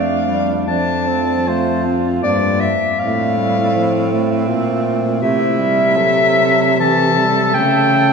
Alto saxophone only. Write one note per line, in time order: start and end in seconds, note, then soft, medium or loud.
0.00 0.68 D4 soft
0.68 1.09 D4 soft
1.08 1.49 C4 soft
1.47 2.25 F4 soft
2.24 2.72 D4 soft
2.98 5.18 C4 medium
5.22 5.98 E4 medium
5.97 6.79 A4 medium
6.79 8.13 A4 medium